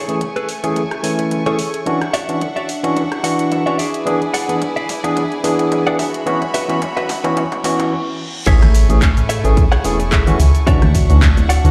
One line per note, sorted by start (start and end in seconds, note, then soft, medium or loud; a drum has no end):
0.00 1.84 A3 medium
0.00 0.15 G#4 loud
0.00 0.15 A4 medium
0.00 0.15 C#5 loud
0.00 1.84 G#5 medium
0.00 3.75 C#6 medium
0.08 0.19 E3 medium
0.08 0.19 A3 medium
0.08 0.19 C#4 medium
0.08 0.20 G#4 medium
0.08 closed hi-hat medium
0.21 closed hi-hat medium
0.21 mid tom soft
0.36 0.49 G#4 medium
0.36 0.49 A4 medium
0.36 0.49 B4 medium
0.36 closed hi-hat soft
0.49 open hi-hat medium
0.63 0.82 E3 medium
0.63 0.82 A3 medium
0.63 0.82 C#4 medium
0.63 0.82 G#4 medium
0.63 muted clean electric guitar stroke loud
0.63 closed hi-hat medium
0.76 muted clean electric guitar stroke soft
0.76 closed hi-hat medium
0.76 mid tom soft
0.91 cross-stick medium
0.91 closed hi-hat soft
1.03 1.43 E3 medium
1.03 1.43 A3 medium
1.03 1.43 C#4 medium
1.03 1.43 G#5 medium
1.03 open hi-hat loud
1.19 muted clean electric guitar stroke soft
1.19 closed hi-hat medium
1.31 closed hi-hat soft
1.31 mid tom medium
1.46 1.57 E3 medium
1.46 1.57 A3 medium
1.46 1.57 C#4 medium
1.46 1.80 G#4 medium
1.46 1.57 G#4 medium
1.46 1.80 A4 medium
1.46 1.80 C#5 medium
1.46 closed hi-hat soft
1.59 open hi-hat medium
1.74 closed hi-hat medium
1.86 1.99 E3 medium
1.86 1.99 C#4 medium
1.86 1.99 D4 medium
1.86 3.77 D4 medium
1.86 2.00 F#4 loud
1.86 3.77 E5 medium
1.86 3.77 F#5 medium
1.86 closed hi-hat soft
1.86 mid tom medium
2.02 cross-stick medium
2.02 closed hi-hat soft
2.13 2.35 F#4 loud
2.13 2.35 C#5 medium
2.13 2.35 D5 loud
2.13 2.35 E5 loud
2.13 open hi-hat loud
2.29 2.39 E3 medium
2.29 2.40 C#4 medium
2.29 2.40 D4 medium
2.29 2.40 F#4 medium
2.29 closed hi-hat medium
2.41 closed hi-hat soft
2.41 mid tom medium
2.56 2.69 F#4 medium
2.56 2.69 C#5 medium
2.56 2.69 D5 medium
2.56 2.69 E5 medium
2.56 closed hi-hat soft
2.69 open hi-hat medium
2.83 3.02 E3 medium
2.83 3.02 C#4 medium
2.83 3.02 D4 medium
2.83 3.02 F#4 medium
2.83 muted clean electric guitar stroke loud
2.83 closed hi-hat medium
2.96 muted clean electric guitar stroke soft
2.96 closed hi-hat soft
2.96 mid tom medium
3.12 cross-stick medium
3.12 closed hi-hat soft
3.23 3.63 E3 medium
3.23 3.63 D4 medium
3.23 3.63 F#4 loud
3.23 3.50 F#5 medium
3.23 open hi-hat loud
3.39 muted clean electric guitar stroke soft
3.39 closed hi-hat medium
3.51 3.65 E5 medium
3.51 closed hi-hat soft
3.51 mid tom medium
3.66 3.77 E3 medium
3.66 3.77 C#4 medium
3.66 3.77 D4 medium
3.66 3.77 F#4 medium
3.66 3.79 F#4 medium
3.66 3.79 C#5 medium
3.66 3.78 D5 medium
3.66 3.78 E5 medium
3.66 closed hi-hat soft
3.78 5.97 E4 medium
3.78 4.24 G#4 medium
3.78 5.97 B4 medium
3.78 5.97 D5 medium
3.78 4.24 D5 medium
3.78 4.24 E5 loud
3.78 5.97 G#5 medium
3.78 open hi-hat medium
3.94 closed hi-hat medium
4.06 4.19 E3 medium
4.06 4.19 B3 medium
4.06 4.19 D4 medium
4.06 4.20 G#4 loud
4.06 closed hi-hat soft
4.06 mid tom medium
4.22 closed hi-hat soft
4.34 4.55 G#4 medium
4.34 4.55 D5 loud
4.34 4.55 F#5 loud
4.34 open hi-hat loud
4.34 mid tom medium
4.48 4.59 E3 medium
4.48 4.60 B3 medium
4.48 4.60 D4 medium
4.48 4.60 G#4 medium
4.48 closed hi-hat medium
4.62 closed hi-hat medium
4.62 mid tom medium
4.76 4.89 G#4 medium
4.76 4.89 D5 medium
4.76 4.89 E5 medium
4.76 closed hi-hat soft
4.89 open hi-hat loud
4.89 mid tom medium
5.04 5.22 E3 medium
5.04 5.22 B3 medium
5.04 5.22 D4 medium
5.04 5.22 G#4 loud
5.04 muted clean electric guitar stroke loud
5.04 closed hi-hat medium
5.16 muted clean electric guitar stroke soft
5.16 closed hi-hat soft
5.16 mid tom medium
5.32 closed hi-hat soft
5.44 5.83 E3 medium
5.44 5.83 B3 medium
5.44 5.83 D4 medium
5.44 5.83 G#4 medium
5.44 open hi-hat loud
5.44 mid tom medium
5.59 muted clean electric guitar stroke soft
5.59 closed hi-hat soft
5.72 closed hi-hat medium
5.72 mid tom medium
5.86 5.97 E3 medium
5.86 5.97 B3 medium
5.86 5.97 D4 medium
5.86 5.98 G#4 medium
5.86 5.99 G#4 medium
5.86 5.99 D5 medium
5.86 5.99 F#5 loud
5.86 closed hi-hat soft
5.99 7.90 F#4 medium
5.99 6.44 F#4 medium
5.99 6.44 B4 medium
5.99 7.90 C#5 medium
5.99 6.44 E5 loud
5.99 7.90 E5 medium
5.99 7.90 B5 medium
5.99 open hi-hat loud
5.99 mid tom medium
6.14 closed hi-hat medium
6.26 6.39 E3 medium
6.26 6.40 B3 medium
6.26 6.40 C#4 medium
6.26 6.40 F#4 loud
6.26 closed hi-hat soft
6.26 mid tom medium
6.42 closed hi-hat soft
6.42 mid tom medium
6.54 6.76 F#4 loud
6.54 6.76 B4 medium
6.54 6.76 E5 loud
6.54 open hi-hat loud
6.54 mid tom loud
6.69 6.80 E3 medium
6.69 6.80 B3 medium
6.69 6.80 C#4 medium
6.69 6.80 F#4 medium
6.69 closed hi-hat soft
6.69 mid tom medium
6.82 closed hi-hat medium
6.82 mid tom loud
6.97 7.09 F#4 medium
6.97 7.09 B4 medium
6.97 7.09 E5 medium
6.97 closed hi-hat soft
6.97 mid tom medium
7.09 open hi-hat medium
7.09 mid tom loud
7.24 7.42 E3 medium
7.24 7.42 B3 medium
7.24 7.42 C#4 medium
7.24 7.43 F#4 loud
7.24 muted clean electric guitar stroke loud
7.24 closed hi-hat medium
7.24 mid tom medium
7.36 muted clean electric guitar stroke soft
7.36 closed hi-hat medium
7.36 mid tom loud
7.36 reverse cymbal medium
7.52 closed hi-hat soft
7.52 mid tom medium
7.64 7.92 E3 loud
7.64 7.92 B3 medium
7.64 7.92 C#4 medium
7.64 7.92 F#4 loud
7.64 open hi-hat loud
7.64 mid tom loud
7.79 muted clean electric guitar stroke soft
7.79 closed hi-hat medium
7.79 mid tom medium
8.46 8.85 A1 loud
8.46 8.60 E3 medium
8.46 10.65 A3 medium
8.46 8.60 A3 medium
8.46 8.60 C#4 medium
8.46 10.65 E4 medium
8.46 8.90 G#4 loud
8.46 8.60 G#4 loud
8.46 8.90 A4 medium
8.46 8.90 C#5 loud
8.46 8.90 E5 loud
8.46 10.65 G#5 medium
8.46 11.71 C#6 medium
8.46 kick loud
8.46 closed hi-hat medium
8.46 crash loud
8.46 tambourine medium
8.46 shaker soft
8.62 cross-stick medium
8.62 closed hi-hat soft
8.62 tambourine soft
8.62 high conga medium
8.62 low conga medium
8.74 open hi-hat loud
8.74 tambourine medium
8.74 shaker medium
8.89 9.00 A1 loud
8.89 9.00 E3 medium
8.89 9.00 A3 medium
8.89 9.00 C#4 medium
8.89 9.00 G#4 medium
8.89 closed hi-hat soft
8.89 tambourine soft
8.89 high conga medium
8.89 shaker soft
9.02 kick loud
9.02 clap loud
9.02 closed hi-hat medium
9.02 tambourine medium
9.02 shaker soft
9.17 9.39 A2 medium
9.17 closed hi-hat soft
9.17 tambourine soft
9.17 shaker soft
9.29 9.51 G#4 medium
9.29 9.51 A4 medium
9.29 9.51 C#5 medium
9.29 9.51 E5 loud
9.29 open hi-hat medium
9.29 tambourine loud
9.29 shaker medium
9.44 9.55 A1 loud
9.44 9.62 E3 medium
9.44 9.62 A3 medium
9.44 9.63 C#4 medium
9.44 9.63 G#4 loud
9.44 closed hi-hat soft
9.44 tambourine soft
9.44 shaker soft
9.57 kick loud
9.57 closed hi-hat medium
9.57 tambourine medium
9.57 shaker soft
9.72 9.84 G#4 loud
9.72 9.84 A4 loud
9.72 9.85 C#5 loud
9.72 9.85 F#5 loud
9.72 cross-stick medium
9.72 closed hi-hat soft
9.72 tambourine soft
9.84 10.36 E1 loud
9.84 9.97 E3 medium
9.84 9.97 A3 medium
9.84 9.98 C#4 medium
9.84 9.98 G#4 loud
9.84 open hi-hat loud
9.84 tambourine medium
9.84 shaker medium
10.00 muted clean electric guitar stroke medium
10.00 closed hi-hat soft
10.00 tambourine soft
10.00 shaker soft
10.11 10.40 G#4 medium
10.11 10.40 A4 medium
10.11 10.40 C#5 medium
10.11 10.40 E5 medium
10.11 kick loud
10.11 clap loud
10.11 closed hi-hat medium
10.11 tambourine medium
10.11 shaker soft
10.27 10.38 E3 loud
10.27 10.38 A3 medium
10.27 10.38 C#4 medium
10.27 10.38 F#4 loud
10.27 closed hi-hat soft
10.27 tambourine soft
10.27 low conga medium
10.27 shaker soft
10.40 10.52 C#2 medium
10.40 open hi-hat medium
10.40 tambourine loud
10.40 shaker medium
10.55 closed hi-hat soft
10.55 tambourine soft
10.55 shaker soft
10.67 11.05 D2 loud
10.67 10.80 E3 medium
10.67 10.80 C#4 medium
10.67 11.71 D4 medium
10.67 10.80 D4 medium
10.67 11.10 F#4 loud
10.67 10.80 F#4 loud
10.67 11.10 C#5 loud
10.67 11.10 D5 loud
10.67 11.71 E5 medium
10.67 11.10 E5 loud
10.67 11.71 F#5 medium
10.67 kick loud
10.67 closed hi-hat medium
10.67 tambourine medium
10.67 shaker soft
10.82 cross-stick medium
10.82 closed hi-hat soft
10.82 tambourine soft
10.82 high conga medium
10.82 low conga loud
10.94 kick medium
10.94 open hi-hat loud
10.94 tambourine medium
10.94 shaker medium
11.09 11.20 D2 loud
11.09 11.20 E3 medium
11.09 11.20 C#4 medium
11.09 11.21 D4 medium
11.09 11.21 F#4 medium
11.09 closed hi-hat soft
11.09 tambourine soft
11.09 high conga medium
11.09 shaker soft
11.22 kick loud
11.22 clap loud
11.22 closed hi-hat medium
11.22 tambourine soft
11.22 shaker soft
11.37 11.59 D1 loud
11.37 closed hi-hat soft
11.37 tambourine soft
11.37 high conga medium
11.37 shaker soft
11.49 11.71 F#4 medium
11.49 11.71 C#5 medium
11.49 11.71 D5 medium
11.49 11.71 F#5 medium
11.49 open hi-hat loud
11.49 tambourine loud
11.49 shaker medium
11.64 11.71 D2 loud
11.64 11.71 E3 medium
11.64 11.71 C#4 medium
11.64 11.71 D4 medium
11.64 11.71 F#4 loud
11.64 closed hi-hat soft
11.64 tambourine soft
11.64 shaker soft